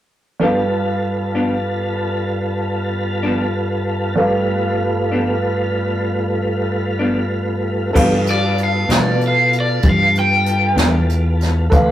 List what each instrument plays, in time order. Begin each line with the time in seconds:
0.40 clean electric guitar G2 F3 B3 D4, tonewheel organ G2 B3 F4 A4, upright piano G3 A4 B4 F5
1.35 clean electric guitar G2 F3 B3 D4
3.23 clean electric guitar G2 F3 B3 D4
4.16 tonewheel organ G2 A3 B3 F4, upright piano G3 A4 B4 F5
5.12 clean electric guitar G2 F3 B3 D4
6.99 clean electric guitar G2 F3 B3 D4
7.93 clean electric guitar G2 F3 B3 D4, fingered electric bass G2, tonewheel organ B3 F4 A4, upright piano A4 B4 F5, kick, crash
8.27 overdriven electric guitar D5, closed hi-hat
8.58 closed hi-hat
8.64 overdriven electric guitar F5
8.89 clean electric guitar G2 F3 B3 D4, fingered electric bass B2, snare, closed hi-hat
8.93 overdriven electric guitar D5
9.21 closed hi-hat
9.28 overdriven electric guitar F5
9.53 closed hi-hat
9.60 overdriven electric guitar D5
9.83 fingered electric bass G2, kick, closed hi-hat
9.90 overdriven electric guitar F5
10.15 closed hi-hat
10.19 overdriven electric guitar G5
10.46 closed hi-hat
10.76 fingered electric bass E2, clean electric guitar G2 F3 B3 D4, snare, closed hi-hat
11.09 closed hi-hat
11.41 snare, closed hi-hat
11.69 fingered electric bass D2, tonewheel organ C4 F#4 B4, upright piano A4 B4, kick, closed hi-hat
11.73 upright piano F5